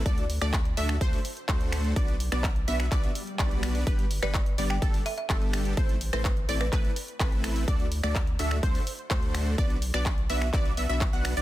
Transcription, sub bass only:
X:1
M:4/4
L:1/16
Q:1/4=126
K:Dmix
V:1 name="Sub bass" clef=bass
D,,3 D,,3 D,,2 D,, z3 D,,4 | B,,,3 B,,,3 B,,,2 B,,, z3 B,,,4 | G,,,3 G,,,3 G,,,2 G,,, z3 G,,,4 | A,,,3 A,,,3 A,,,2 A,,, z3 A,,,4 |
D,,3 D,,3 D,,2 D,, z3 D,,4 | B,,,3 B,,,3 B,,,2 B,,,2 B,,, B,,,2 B,,,2 B,,, |]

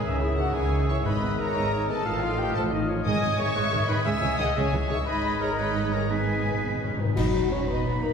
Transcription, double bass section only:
X:1
M:6/8
L:1/8
Q:3/8=118
K:G#m
V:1 name="Double bass section" clef=bass
C,,3 C,,3 | G,,,3 G,,,3 | =A,,,3 A,,,3 | G,,, G,,, G,,, G,,, G,,, G,,, |
C,, C,, C,, C,, C,, C,, | G,,,6- | G,,,4- G,,, z | [K:B] B,,, B,,, B,,, B,,, B,,, B,,, |]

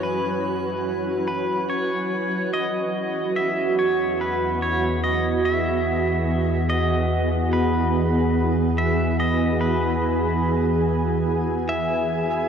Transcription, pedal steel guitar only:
X:1
M:3/4
L:1/16
Q:1/4=72
K:E
V:1 name="Pedal steel guitar"
B6 B2 c4 | d4 e2 c2 B2 c2 | d2 e6 d3 z | B6 e2 d2 B2- |
B4 z4 e4 |]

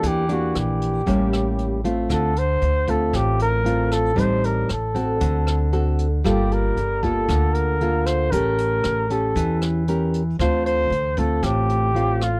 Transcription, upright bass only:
X:1
M:4/4
L:1/8
Q:1/4=116
K:Dphr
V:1 name="Upright bass" clef=bass
=E,,2 B,,,2 A,,,4 | D,,2 D,,2 A,,,4 | A,,,2 A,,,2 D,,4 | G,,,2 G,,,2 D,,4 |
A,,,2 A,,,2 =E,,4 | D,,2 D,,2 A,,,4 |]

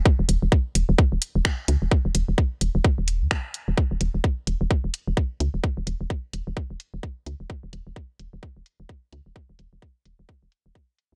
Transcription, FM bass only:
X:1
M:4/4
L:1/16
Q:"Swing 16ths" 1/4=129
K:Dbmix
V:1 name="FM bass" clef=bass
z E,,, E,,, E,,, z2 E,,, E,,, z E,,, z E,,, z2 D,, E,,, | z E,,, E,,, E,,, z2 E,,, E,,, z E,,,2 E,, z3 E,,, | z E,,, E,,, E,,, z2 E,,, E,,, z E,,, z E,,, z2 D,, E,,, | z E,,, E,,, E,,, z2 E,,, E,,, z E,,, z E,,, z2 D,, E,,, |
z E,,, E,,, E,,, z2 E,,, E,,, z E,,, z E,,, z2 D,, E,,, | z E,,, E,,, E,,, z2 E,,, E,,, z E,,, z E,,, z4 |]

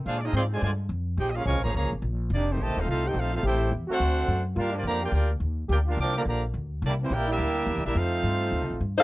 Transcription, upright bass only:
X:1
M:4/4
L:1/8
Q:"Swing" 1/4=212
K:F
V:1 name="Upright bass" clef=bass
B,,2 _A,,2 G,,2 F,,2 | B,,,2 (3C,, B,,, _A,,, (3_D,, B,,, A,,, B,,,2 | F,,,2 (3A,,, F,,, _E,,, C,,2 B,,,2 | A,,,2 E,, z D,,2 ^F,,2 |
G,,2 F,,2 D,,2 _E,,2 | D,,2 C,,2 B,,,2 D,,2 | C,,2 B,,,2 D,,2 (3E,, C,, B,,, | F,,2 G,,2 (3_E,, C,, A,,, G,,2 |]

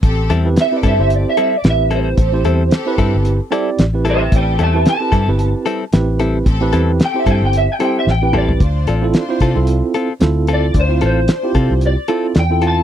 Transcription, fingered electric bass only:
X:1
M:4/4
L:1/16
Q:"Swing 16ths" 1/4=112
K:Am
V:1 name="Fingered electric bass" clef=bass
A,,,2 E,,2 z2 G,, G,,,2 z3 A,,,4 | A,,,2 E,,2 z2 G,, G,,,2 z3 A,,,4 | A,,,2 E,,2 z2 G,, G,,,2 z3 A,,,4 | A,,,2 E,,2 z2 G,, G,,,2 z3 A,,,4 |
D,,2 A,,,2 z2 C, C,,2 z3 D,,4 | D,,2 A,,,2 z2 C, C,,2 z3 E,,4 |]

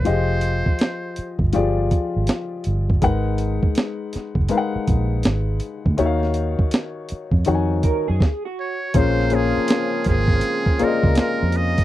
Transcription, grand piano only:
X:1
M:4/4
L:1/16
Q:"Swing 16ths" 1/4=81
K:Bbm
V:1 name="Grand piano"
[F,F=GAe]6- [F,FGAe] z [F,FGA=d]6- [F,FGAd] z | [A,EB_cg]6- [A,EBcg] z [A,EBcfg]6- [A,EBcfg] z | [E,EGd=ef]6- [_E,EGd=ef] z [_E,EGdga]4 z4 | [B,DFAc]2 [B,DFAc]6- [B,DFAc] z [B,FAc=de]6 |]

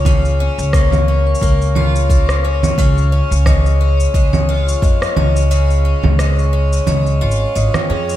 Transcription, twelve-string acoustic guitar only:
X:1
M:4/4
L:1/8
Q:"Swing 16ths" 1/4=88
K:Db
V:1 name="Twelve-string acoustic guitar"
[D,B,DF] D B, D B, F B, D | D, D A, D A, F A, D | D, D A, D A, F A, D |]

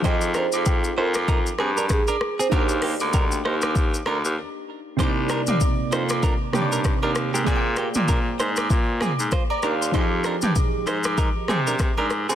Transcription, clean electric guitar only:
X:1
M:4/4
L:1/16
Q:"Swing 16ths" 1/4=97
K:Cm
V:1 name="Clean electric guitar"
[Ec] z [DB] z3 [Ec] z [EB] z [CA] [DB] z [DB] z [CA] | [DB] z [B,G] z [DB] z [Ec] z3 [DB] z4 z | [Ec] z [DB] z3 [Ec] z [DB] z [B,G] [DB] z [DB] z [B,G] | [CA] z [B,G] z [DB] z [Ec] z3 [CA] z [Fc] z [DB] z |
[Ec] z [DB] z3 [Ec] z [EB] z [CA] [DB] z [DB] z [CA] |]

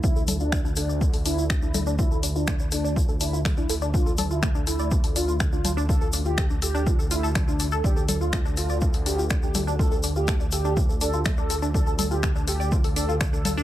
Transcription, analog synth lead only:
X:1
M:4/4
L:1/16
Q:1/4=123
K:Dm
V:1 name="Analog synth lead"
E2 z D2 z D2 z2 E2 z E2 z | E2 z D2 z D2 z2 E2 z E2 z | F2 z E2 z E2 z2 F2 z F2 z | A2 z G2 z G2 z2 E2 z D2 z |
G2 z F2 z F2 z2 G2 z G2 z | A2 z G2 z G2 z2 A2 z A2 z | A2 z G2 z G2 z2 A2 z A2 z |]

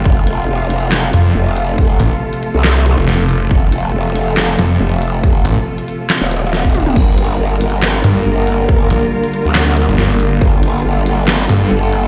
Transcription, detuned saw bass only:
X:1
M:4/4
L:1/16
Q:"Swing 16ths" 1/4=139
K:Fmix
V:1 name="Detuned saw bass" clef=bass
z8 z2 F,,2 z4 | z2 A,,, z8 F,,,2 F,,,3 | z8 z2 F,,2 z4 | z2 A,,, z12 z |
z8 z2 G,,2 z4 | z2 B,,, z8 G,,,2 G,,,3 | z8 z2 G,,2 z4 |]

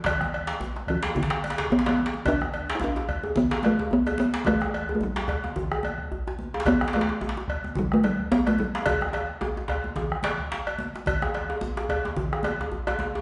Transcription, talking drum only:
X:1
M:4/4
L:1/16
Q:"Swing 16ths" 1/4=109
K:G
V:1 name="Talking drum"
E,6 E,2 D,4 B, B,3 | D3- D/2 E/2 D4 B,2 A,2 B,2 B,2 | A,3- A,/2 A,/2 G,8- G,2 z2 | B,2 A,6 G, A, G,2 B, A, G,2- |
G,12 z4 | z16 |]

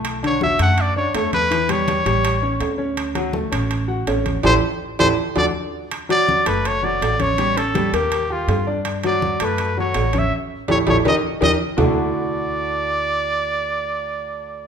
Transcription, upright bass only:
X:1
M:4/4
L:1/8
Q:1/4=164
K:D
V:1 name="Upright bass" clef=bass
B,,,3 F,,3 E,,2- | E,,3 A,,,3 D,,2- | D,,3 A,,,3 A,,,2 | A,,, z2 A,,, z D,, z2 |
z3 F,,,3 A,,,2- | A,,,3 _E,,3 G,,2- | G,,3 F,,3 A,,,2 | z2 A,,, A,,, _E,, z E,, z |
D,,8- | D,,8 |]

